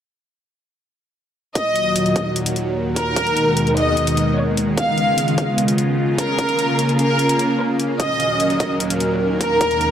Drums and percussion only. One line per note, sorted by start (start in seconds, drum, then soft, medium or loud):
1.55 kick loud
1.55 closed hi-hat medium
1.76 closed hi-hat soft
1.96 closed hi-hat medium
2.06 closed hi-hat soft
2.16 kick loud
2.16 closed hi-hat medium
2.36 closed hi-hat medium
2.46 closed hi-hat medium
2.56 closed hi-hat medium
2.96 kick medium
2.96 closed hi-hat medium
3.16 kick loud
3.16 closed hi-hat medium
3.27 closed hi-hat soft
3.37 closed hi-hat soft
3.57 closed hi-hat medium
3.67 closed hi-hat soft
3.77 closed hi-hat soft
3.97 closed hi-hat medium
4.07 closed hi-hat medium
4.17 closed hi-hat medium
4.57 closed hi-hat medium
4.78 kick loud
4.78 closed hi-hat medium
4.98 closed hi-hat soft
5.18 closed hi-hat medium
5.28 closed hi-hat soft
5.38 kick loud
5.38 closed hi-hat soft
5.58 closed hi-hat medium
5.68 closed hi-hat medium
5.78 closed hi-hat medium
6.18 kick medium
6.18 closed hi-hat medium
6.39 kick loud
6.39 closed hi-hat medium
6.49 closed hi-hat soft
6.59 closed hi-hat soft
6.79 closed hi-hat medium
6.89 closed hi-hat soft
6.99 closed hi-hat soft
7.19 closed hi-hat medium
7.29 closed hi-hat medium
7.39 closed hi-hat soft
7.80 closed hi-hat medium
8.00 kick loud
8.00 closed hi-hat medium
8.20 closed hi-hat soft
8.40 closed hi-hat medium
8.50 closed hi-hat soft
8.60 kick loud
8.60 closed hi-hat soft
8.80 closed hi-hat medium
8.90 closed hi-hat medium
9.00 closed hi-hat soft
9.41 kick medium
9.41 closed hi-hat medium
9.61 kick loud
9.61 closed hi-hat medium
9.71 closed hi-hat soft
9.81 closed hi-hat soft